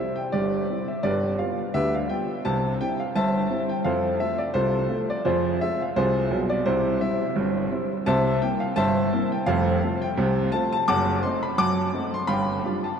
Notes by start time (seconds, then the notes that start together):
Already playing: G3 C4 E4 E5
0.16 G5
0.32 G1 G2 G4 D5
0.69 G3 C4 E4
0.88 E5
1.03 G1 G2 G4 B4 D5
1.39 G3 B3 F4 F5
1.74 D2 D3 G4 B4 E5
1.95 F5
2.09 G3 B3 F4 G5
2.45 C2 C3 A5
2.81 G3 C4 E4 G5
3.00 F5
3.16 G1 G2 C5 E5 A5
3.50 G3 C4 E4
3.69 G5
3.84 F2 F3 A4 C5 F5
4.20 A3 C4 F4 E5
4.38 D5
4.54 C2 C3 F4 A4 C5
4.89 A3 C4 F4
5.10 D5
5.25 F2 F3 F4 G#4 C5
5.61 G#3 C4 F4 E5
5.82 F5
5.96 C2 C3 F4 G#4 C5
6.31 B1 B2
6.50 D5
6.66 C2 C3 E4 G4 C5
7.01 G3 C4 E4 E5
7.36 G1 G2
7.71 G3 C4 E4
8.06 C2 C3 C5 E5 A5
8.41 A#3 C4 E4 G5
8.60 F5
8.76 G1 G2 C5 E5 A5
9.13 A#3 C4 E4
9.32 G5
9.46 F1 F2 A4 C5 F5
9.83 A3 C4 F4
10.02 G5
10.17 C2 C3
10.52 A3 C4 F4 A5
10.72 A5
10.88 F#1 F#2 F#5 A5 D6
11.23 A3 C4 D#4 C6
11.43 B5
11.58 F#2 F#3 F#5 A5 D6
11.93 A3 C4 D#4
12.14 C6
12.27 G1 G2 F5 G5 B5
12.64 G3 D4 F4
12.84 A5